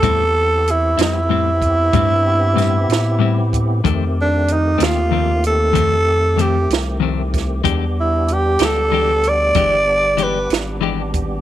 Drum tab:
HH |x-xx-xx-xx-x|x-xx-xx-xx-x|x-xx-xx-xx-x|
SD |---o----oo--|---o-----o-o|---o-----o--|
BD |o----oo----o|o-----o----o|o-----o----o|